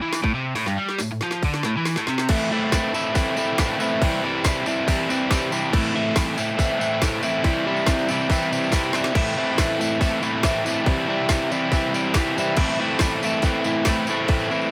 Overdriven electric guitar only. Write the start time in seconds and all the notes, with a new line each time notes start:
0.02 E3
0.23 A2
0.35 C3
0.56 A2
0.67 G2
0.78 G3
1.00 A2
1.11 A2
1.23 F3
1.45 D3
1.65 A2
1.77 E3
1.98 A2
2.08 C3
2.30 A2 E3 A3 C4 E4
2.51 A2 E3 A3 C4 E4
2.72 A2 E3 A3 C4 E4
2.93 A2 E3 A3 C4 E4
3.13 A2 E3 A3 C4 E4
3.36 A2 E3 A3 C4 E4
3.58 A2 E3 A3 C4 E4
3.79 A2 E3 A3 C4 E4
4.02 C3 E3 G3 C4 E4
4.23 C3 E3 G3 C4 E4
4.45 C3 E3 G3 C4 E4
4.66 C3 E3 G3 C4 E4
4.87 C3 E3 G3 C4 E4
5.09 C3 E3 G3 C4 E4
5.30 C3 E3 G3 C4 E4
5.52 C3 E3 G3 C4 E4
5.72 A2 E3 A3 C4 E4
5.93 A2 E3 A3 C4 E4
6.15 A2 E3 A3 C4 E4
6.37 A2 E3 A3 C4 E4
6.58 A2 E3 A3 C4 E4
6.79 A2 E3 A3 C4 E4
7.02 A2 E3 A3 C4 E4
7.22 A2 E3 A3 C4 E4
7.43 C3 E3 G3 C4 E4
7.66 C3 E3 G3 C4 E4
7.86 C3 E3 G3 C4 E4
8.09 C3 E3 G3 C4 E4
8.29 C3 E3 G3 C4 E4
8.51 C3 E3 G3 C4 E4
8.72 C3 E3 G3 C4 E4
8.93 C3 E3 G3 C4 E4
9.13 A2 E3 A3 C4 E4
9.36 A2 E3 A3 C4 E4
9.58 A2 E3 A3 C4 E4
9.79 A2 E3 A3 C4 E4
10.00 A2 E3 A3 C4 E4
10.21 A2 E3 A3 C4 E4
10.43 A2 E3 A3 C4 E4
10.64 A2 E3 A3 C4 E4
10.86 C3 E3 G3 C4 E4
11.08 C3 E3 G3 C4 E4
11.30 C3 E3 G3 C4 E4
11.51 C3 E3 G3 C4 E4
11.72 C3 E3 G3 C4 E4
11.93 C3 E3 G3 C4 E4
12.16 C3 E3 G3 C4 E4
12.36 C3 E3 G3 C4 E4
12.56 A2 E3 A3 C4 E4
12.79 A2 E3 A3 C4 E4
13.00 A2 E3 A3 C4 E4
13.23 A2 E3 A3 C4 E4
13.43 A2 E3 A3 C4 E4
13.63 A2 E3 A3 C4 E4
13.86 A2 E3 A3 C4 E4
14.08 A2 E3 A3 C4 E4
14.29 A2 E3 A3 C4 E4
14.50 A2 E3 A3 C4 E4